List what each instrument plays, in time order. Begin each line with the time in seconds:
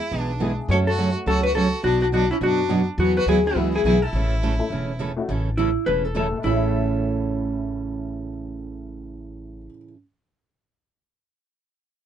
Already playing: fiddle E4, hollow-body jazz guitar G#4
0.11 upright bass B1, steel-string acoustic guitar E3 G#3 B3 E4 G#4
0.20 fiddle D4, hollow-body jazz guitar F#4
0.40 steel-string acoustic guitar E3 G#3 B3 E4 G#4, honky-tonk piano G#3 B3 E4 G#4
0.68 upright bass F#2, steel-string acoustic guitar C#3 F#3 A3 C#4 F#4, honky-tonk piano F#3 A3 C#4 F#4, fiddle A4, hollow-body jazz guitar C#5
0.87 fiddle F#4, hollow-body jazz guitar A4
0.98 steel-string acoustic guitar C#3 F#3 A3 C#4 F#4
1.26 upright bass C#2, steel-string acoustic guitar C#3 F#3 A3 C#4 F#4, fiddle F#4, hollow-body jazz guitar A4
1.43 fiddle F#4, hollow-body jazz guitar B4
1.55 steel-string acoustic guitar C#3 F#3 A3 C#4 F#4, fiddle F#4, hollow-body jazz guitar A4
1.83 upright bass B1, steel-string acoustic guitar B2 F#3 B3 D4 F#4, fiddle D4, hollow-body jazz guitar F#4
2.02 fiddle D4, hollow-body jazz guitar F#4
2.12 steel-string acoustic guitar B2 F#3 B3 D4 F#4, fiddle D4, hollow-body jazz guitar F#4
2.31 fiddle C#4, hollow-body jazz guitar E4
2.41 upright bass F#2, steel-string acoustic guitar B2 F#3 B3 D4 F#4, fiddle D4, hollow-body jazz guitar F#4
2.69 steel-string acoustic guitar B2 F#3 B3 D4 F#4, honky-tonk piano F#3 B3 D4 F#4
2.98 upright bass E2, steel-string acoustic guitar E3 F#3 B3 F#4 G#4, fiddle B3, hollow-body jazz guitar F#4
3.17 fiddle F#4, hollow-body jazz guitar B4
3.26 upright bass D2, steel-string acoustic guitar E3 F#3 B3 F#4 G#4, fiddle E4, hollow-body jazz guitar G#4
3.46 fiddle B3, hollow-body jazz guitar E4
3.55 upright bass C#2, steel-string acoustic guitar E3 F#3 B3 F#4 G#4, honky-tonk piano G#3 B3 E4 F#4
3.75 fiddle E4, hollow-body jazz guitar G#4
3.84 upright bass B1, steel-string acoustic guitar E3 F#3 B3 F#4 G#4, fiddle E4, hollow-body jazz guitar G#4
4.02 fiddle E4, hollow-body jazz guitar A4
4.13 upright bass A1, steel-string acoustic guitar C#3 E3 A3 C#4 A4
4.43 steel-string acoustic guitar C#3 E3 A3 C#4 A4
4.59 honky-tonk piano A3 C#4 E4 A4
4.70 upright bass E1, steel-string acoustic guitar C#3 E3 A3 C#4 A4
4.99 steel-string acoustic guitar C#3 E3 A3 C#4 A4
5.17 honky-tonk piano A3 C#4 E4 F#4
5.29 upright bass A1, steel-string acoustic guitar C#3 E3 A3 C#4 A4
5.57 steel-string acoustic guitar C#3 E3 A3 C#4 A4, hollow-body jazz guitar E4
5.86 upright bass E1, steel-string acoustic guitar C#3 E3 A3 C#4 A4, hollow-body jazz guitar B4
6.05 hollow-body jazz guitar A4
6.15 steel-string acoustic guitar C#3 E3 A3 C#4 A4, honky-tonk piano A3 C#4 E4 A4, hollow-body jazz guitar A4
6.31 honky-tonk piano A2
6.37 honky-tonk piano A3
6.43 upright bass A1, steel-string acoustic guitar A2 C#3 E3 A3 C#4 A4, honky-tonk piano C#4, hollow-body jazz guitar E4
6.50 honky-tonk piano E4
6.56 honky-tonk piano E5